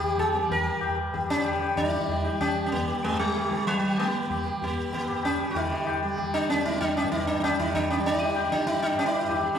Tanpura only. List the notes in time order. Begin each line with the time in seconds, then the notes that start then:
Already playing: G2 D3 G3
0.35 G3
0.84 G2
1.34 D3
1.84 G3
2.33 G3
2.79 G2
3.29 D3
3.79 G3
4.27 G3
4.75 G2
5.25 D3
5.56 D3
6.05 G3
6.53 G3
7.01 G2
7.50 D3
7.98 G3
8.45 G3
8.94 G2
9.42 D3